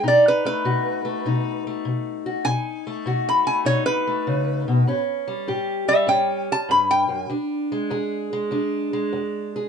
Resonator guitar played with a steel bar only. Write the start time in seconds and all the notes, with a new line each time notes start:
0.08 D5
0.28 B4
0.46 B4
2.45 G#5
3.29 B5
3.47 G#5
3.66 C#5
3.86 B4
5.88 E5
6.09 G5
6.52 A5
6.71 B5
6.91 G5